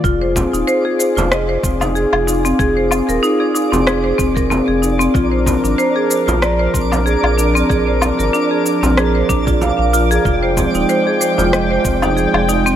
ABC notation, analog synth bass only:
X:1
M:4/4
L:1/16
Q:"Swing 16ths" 1/4=94
K:Fdor
V:1 name="Analog synth bass" clef=bass
F,,,3 E,,, z3 F,,,3 F,,,3 F,,,3 | F,,,3 E,,, z3 F,,,3 F,,,3 F,,,3 | B,,,3 A,,, z3 B,,,3 B,,,3 B,,,3 | B,,,3 A,,, z3 B,,,3 B,,,3 B,,,3 |
F,,,3 E,,, z3 F,,,3 F,,,3 F,,,3 |]